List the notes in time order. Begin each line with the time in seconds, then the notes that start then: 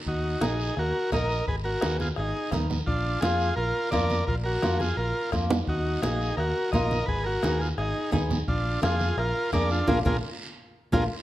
0.07 D#2 D#4 F#4, bombo low, long guiro
0.24 high conga
0.41 A#1 D#4 F#4 G#4 A#4, bombo rim, high conga, short guiro
0.60 short guiro
0.77 D#2 F#4 A#4, bombo rim, long guiro
0.94 high conga
1.12 A#1 D#4 F#4 A#4 D#5, bombo low, bombo rim, high conga, short guiro
1.29 short guiro
1.47 G#1 G#4 B4, bombo low, long guiro
1.64 F#4 A#4, high conga
1.81 D#2 B3 D#4 G#4, bombo rim, high conga, short guiro
2.00 F4 G#4, high conga, short guiro
2.16 G#1 D#4 G#4, bombo rim, long guiro
2.34 high conga
2.51 D#2 B3 D#4 A#4, bombo low, bombo rim, high conga, low conga, short guiro
2.70 low conga, short guiro
2.86 A#1 D4 F4, bombo low, long guiro
3.05 high conga
3.21 F2 A#3 D4 F4 G#4, bombo rim, high conga, short guiro
3.40 short guiro
3.56 A#1 F4 A#4, long guiro
3.75 high conga
3.91 F2 A#3 D4 F4 A#4 D5, bombo low, bombo rim, high conga, short guiro
4.10 high conga, short guiro
4.27 A#1 F4 A#4, bombo low, long guiro
4.44 F#4 A#4, high conga
4.62 F2 A#3 D4 F4, bombo rim, high conga, short guiro
4.79 F4 G#4, high conga, short guiro
4.97 A#1 F4 A#4, long guiro
5.32 F2 A#3 D4 F4, bombo low, bombo rim, short guiro
5.50 low conga, short guiro
5.67 D#2 D#4 F#4, bombo low, long guiro
5.86 high conga
6.02 A#1 A#3 D#4 F#4 G#4, bombo rim, high conga, short guiro
6.21 short guiro
6.37 D#2 F#4 A#4, bombo rim, long guiro
6.56 high conga
6.72 A#1 A#3 D#4 F4 A#4 D#5, bombo low, bombo rim, high conga, short guiro
6.91 high conga, short guiro
7.06 G#1 G#4 B4, bombo low, long guiro
7.24 F#4 A#4, high conga
7.42 D#2 B3 D#4 G#4, bombo rim, high conga, short guiro
7.59 F4 G#4, short guiro
7.78 G#1 D#4 G#4, bombo rim, long guiro
7.96 high conga
8.12 D#2 B3 D#4 G#4, bombo low, bombo rim, high conga, low conga, short guiro
8.30 low conga, short guiro
8.48 A#1 D4 F4, bombo low, long guiro
8.66 high conga
8.82 F2 A#3 D4 F4 G#4, bombo rim, high conga, short guiro
9.00 high conga, short guiro
9.17 A#1 F4 A#4, bombo rim, long guiro
9.36 high conga
9.52 F2 A#3 D4 G#4 A#4 D5, bombo low, bombo rim, high conga, short guiro
9.70 D4 F4, short guiro
9.87 A#1 A#3 D4 F4 G#4 A#4, bombo low, high conga, long guiro
10.04 A#1 A#3 D4 F4 G#4 A#4, bombo low, high conga, long guiro
10.92 A#1 A#3 D4 F4 G#4 A#4, bombo low, high conga, long guiro